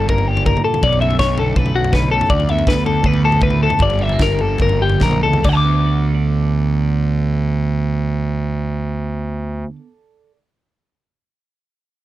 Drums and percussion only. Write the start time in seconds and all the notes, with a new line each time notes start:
0.09 kick, floor tom
0.18 floor tom
0.37 floor tom
0.46 kick, mid tom
0.57 mid tom
0.74 floor tom, mid tom
0.83 kick, floor tom
0.93 floor tom
1.02 floor tom
1.11 floor tom
1.19 kick, snare, floor tom
1.38 floor tom
1.56 kick, floor tom
1.66 floor tom
1.84 floor tom
1.93 kick, snare, mid tom
2.02 mid tom
2.21 floor tom, mid tom
2.30 kick, floor tom
2.40 floor tom
2.49 floor tom
2.58 floor tom
2.67 kick, snare, floor tom
2.86 floor tom, mid tom
3.04 kick, floor tom
3.14 floor tom
3.32 floor tom
3.41 kick, mid tom
3.50 mid tom
3.70 floor tom, mid tom
3.79 kick, floor tom
3.90 floor tom
3.99 floor tom
4.09 floor tom
4.19 kick, snare, floor tom
4.39 floor tom
4.58 kick, floor tom
4.69 floor tom
4.90 floor tom
5.00 kick, snare, mid tom
5.11 mid tom
5.33 floor tom, mid tom
5.44 kick, crash